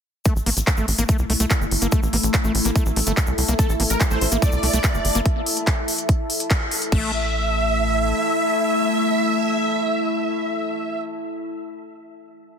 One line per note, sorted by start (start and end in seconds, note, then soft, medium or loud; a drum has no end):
0.25 0.34 A3 medium
0.25 5.30 A3 medium
0.25 5.30 E4 medium
0.25 6.91 E4 medium
0.25 kick loud
0.25 closed hi-hat medium
0.25 shaker medium
0.36 0.42 A1 medium
0.36 shaker soft
0.46 0.52 A1 medium
0.46 0.50 A#3 loud
0.46 open hi-hat loud
0.57 0.63 A1 medium
0.57 closed hi-hat medium
0.57 shaker medium
0.67 kick loud
0.67 clap loud
0.67 closed hi-hat medium
0.67 shaker medium
0.76 0.84 A1 medium
0.76 0.86 A3 medium
0.76 6.92 A4 medium
0.76 shaker soft
0.82 6.92 A5 medium
0.88 0.94 A1 loud
0.88 6.92 E5 medium
0.88 open hi-hat loud
0.98 1.04 A1 medium
0.98 1.04 A#3 medium
0.98 closed hi-hat medium
0.98 shaker medium
1.09 1.17 A3 medium
1.09 kick loud
1.09 closed hi-hat medium
1.09 shaker medium
1.18 1.25 C2 medium
1.18 shaker soft
1.30 1.36 C2 loud
1.30 1.33 A3 medium
1.30 open hi-hat loud
1.40 1.46 C2 medium
1.40 1.46 A3 medium
1.40 closed hi-hat medium
1.40 shaker medium
1.50 kick loud
1.50 clap loud
1.50 closed hi-hat medium
1.50 shaker medium
1.61 1.67 G1 medium
1.61 shaker soft
1.71 1.77 G1 medium
1.71 open hi-hat loud
1.82 1.88 G1 medium
1.82 1.87 A#3 medium
1.82 closed hi-hat medium
1.82 shaker medium
1.92 2.00 A3 medium
1.92 kick loud
1.92 closed hi-hat medium
1.92 shaker medium
2.03 2.09 A1 medium
2.03 shaker soft
2.13 2.19 A1 loud
2.13 2.16 A#3 medium
2.13 open hi-hat loud
2.23 2.29 A1 medium
2.23 closed hi-hat medium
2.23 shaker medium
2.34 kick loud
2.34 clap loud
2.34 closed hi-hat medium
2.34 shaker medium
2.44 2.50 A1 medium
2.44 2.52 A3 medium
2.44 shaker soft
2.55 2.61 A1 medium
2.55 open hi-hat loud
2.65 2.71 A1 medium
2.65 2.71 A#3 medium
2.65 closed hi-hat medium
2.65 shaker medium
2.76 2.84 A3 medium
2.76 kick loud
2.76 closed hi-hat medium
2.76 shaker medium
2.86 2.92 A1 medium
2.86 shaker soft
2.96 3.02 A1 loud
2.96 3.00 A3 medium
2.96 open hi-hat loud
3.06 3.13 G1 medium
3.06 3.12 A3 medium
3.06 closed hi-hat medium
3.06 shaker medium
3.17 kick loud
3.17 clap loud
3.17 closed hi-hat medium
3.17 shaker medium
3.27 3.34 C2 medium
3.27 shaker soft
3.38 3.44 C2 loud
3.38 open hi-hat loud
3.48 3.55 C2 medium
3.48 3.54 A#3 medium
3.48 closed hi-hat medium
3.48 shaker medium
3.59 3.67 A3 medium
3.59 3.73 A4 loud
3.59 kick loud
3.59 closed hi-hat medium
3.59 shaker medium
3.69 3.75 A1 medium
3.69 shaker soft
3.80 3.86 A1 loud
3.80 3.83 A#3 medium
3.80 open hi-hat loud
3.90 3.96 A1 medium
3.90 3.99 A#4 medium
3.90 closed hi-hat medium
3.90 shaker medium
4.00 kick loud
4.00 clap loud
4.00 closed hi-hat medium
4.00 shaker medium
4.11 4.17 A1 medium
4.11 4.19 A3 medium
4.11 4.25 C5 loud
4.11 shaker soft
4.21 4.27 A1 loud
4.21 open hi-hat loud
4.32 4.38 A1 medium
4.32 4.37 A#3 medium
4.32 closed hi-hat medium
4.32 shaker medium
4.42 4.50 A3 medium
4.42 5.17 D5 loud
4.42 kick loud
4.42 closed hi-hat medium
4.42 shaker medium
4.52 4.59 C2 medium
4.52 shaker soft
4.63 4.69 C2 loud
4.63 4.66 A3 medium
4.63 open hi-hat loud
4.73 4.80 C2 medium
4.73 4.79 A3 medium
4.73 closed hi-hat medium
4.73 shaker medium
4.84 kick loud
4.84 clap loud
4.84 closed hi-hat medium
4.84 shaker medium
4.94 5.00 G1 medium
4.94 shaker soft
5.05 5.11 G1 medium
5.05 open hi-hat loud
5.15 5.21 G1 medium
5.15 5.21 A#3 medium
5.15 closed hi-hat medium
5.15 shaker medium
5.26 kick loud
5.26 closed hi-hat medium
5.46 open hi-hat loud
5.57 closed hi-hat medium
5.67 kick loud
5.67 clap loud
5.67 closed hi-hat medium
5.88 open hi-hat loud
5.98 closed hi-hat medium
6.09 kick loud
6.09 closed hi-hat medium
6.30 open hi-hat loud
6.40 closed hi-hat medium
6.51 kick loud
6.51 clap loud
6.51 closed hi-hat medium
6.71 open hi-hat loud
6.82 closed hi-hat medium
6.92 8.13 A1 medium
6.92 11.06 A3 medium
6.92 7.12 A3 medium
6.92 11.06 E4 medium
6.92 11.02 E4 medium
6.92 11.02 E5 loud
6.92 kick loud
6.92 crash medium
6.98 11.02 A4 medium
7.05 11.02 E5 medium
7.11 11.02 A5 medium